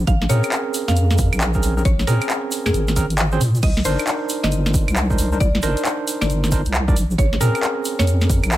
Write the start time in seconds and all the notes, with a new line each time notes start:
0.07 A#1 F5, kick, closed hi-hat, shaker
0.22 snare
0.29 A#2 C4 C#4 G#4 A#4 C#5, open hi-hat, shaker
0.43 closed hi-hat, claves, shaker
0.52 clap, closed hi-hat, shaker
0.74 open hi-hat, shaker
0.88 F2 F5, snare, closed hi-hat, shaker
0.96 closed hi-hat, shaker
1.10 snare, shaker
1.18 kick, open hi-hat, shaker
1.33 A#1, closed hi-hat, claves, shaker
1.41 clap, shaker
1.54 C4 C#4 G#4 A#4, kick, shaker
1.63 A#1, open hi-hat, shaker
1.77 C4 C#4 G#4 A#4, shaker
1.85 A#1 C#5, kick, closed hi-hat, shaker
1.99 snare, shaker
2.07 A#2 C4 C#4 G#4 A#4, open hi-hat, shaker
2.21 closed hi-hat, claves, shaker
2.30 clap, closed hi-hat, shaker
2.52 open hi-hat, shaker
2.66 F2 G#4, snare, closed hi-hat, claves, shaker
2.74 G#1, closed hi-hat, shaker
2.88 snare, shaker
2.96 C4 C#4 G#4 A#4, kick, open hi-hat, shaker
3.10 closed hi-hat, shaker
3.17 clap, shaker
3.32 C4 C#4 G#4 C5, shaker
3.41 A#2, open hi-hat, shaker
3.55 closed hi-hat, shaker
3.62 C2 D#5, kick, closed hi-hat, crash, shaker
3.77 snare
3.85 G1 D4 D#4 A#4 C5, open hi-hat, shaker
3.99 closed hi-hat, claves, shaker
4.07 clap, closed hi-hat, shaker
4.29 open hi-hat, shaker
4.43 G1 D#5, snare, closed hi-hat, shaker
4.52 closed hi-hat, shaker
4.66 snare, shaker
4.74 kick, open hi-hat, shaker
4.88 C2, closed hi-hat, claves, shaker
4.96 clap, shaker
5.10 D4 D#4 A#4 C5, kick, shaker
5.18 C2, open hi-hat, shaker
5.32 D4 D#4 A#4 C5, shaker
5.40 C2 D5, kick, closed hi-hat, shaker
5.55 snare
5.62 G1 D4 D#4 A#4 C5, open hi-hat, shaker
5.77 closed hi-hat, shaker
5.85 clap, closed hi-hat, shaker
6.07 open hi-hat, shaker
6.21 G1 D5, snare, closed hi-hat, claves, shaker
6.30 closed hi-hat, shaker
6.44 snare, shaker
6.51 D4 D#4 A#4 C5, kick, open hi-hat, shaker
6.66 C2, closed hi-hat, shaker
6.74 clap, shaker
6.88 D4 D#4 A#4 D5, kick, shaker
6.96 A#1, open hi-hat, shaker
7.11 shaker
7.18 A#1 C#5, kick, closed hi-hat, shaker
7.33 snare
7.41 A#2 C4 C#4 G#4 A#4, open hi-hat, shaker
7.55 closed hi-hat, claves, shaker
7.63 clap, closed hi-hat, shaker
7.85 open hi-hat, shaker
7.99 F2 C#5, snare, closed hi-hat, shaker
8.07 closed hi-hat, shaker
8.21 snare, shaker
8.30 kick, open hi-hat, shaker
8.43 A#1, closed hi-hat, claves, shaker
8.51 clap, shaker